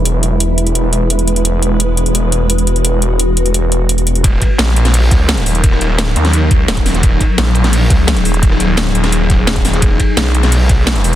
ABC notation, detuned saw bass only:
X:1
M:4/4
L:1/8
Q:1/4=172
K:Ebphr
V:1 name="Detuned saw bass" clef=bass
=E,,,8- | =E,,,8- | =E,,,8 | E,,, z B,,,3 D,,2 E,,,- |
E,,, E,,,2 E,,3 E,,,2 | E,,, z B,,,3 D,,2 E,,,- | E,,, E,,,2 E,,,4- E,,, | =E,,, z =B,,,3 B,,,2 E,,, |]